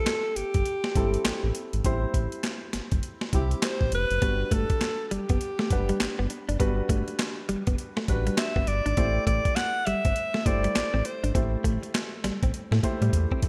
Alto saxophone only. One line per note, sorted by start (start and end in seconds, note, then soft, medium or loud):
0.00 0.38 A4 medium
0.36 1.55 G4 medium
3.35 3.67 G4 medium
3.65 3.94 C5 loud
3.95 4.55 B4 loud
4.54 5.07 A4 loud
5.07 5.13 A4 medium
5.12 6.30 G4 medium
8.09 8.40 B4 medium
8.38 8.69 E5 medium
8.67 9.26 D5 loud
9.26 9.57 D5 loud
9.55 9.87 F#5 loud
9.86 10.47 E5 loud
10.46 11.07 D5 loud
11.06 11.35 C5 medium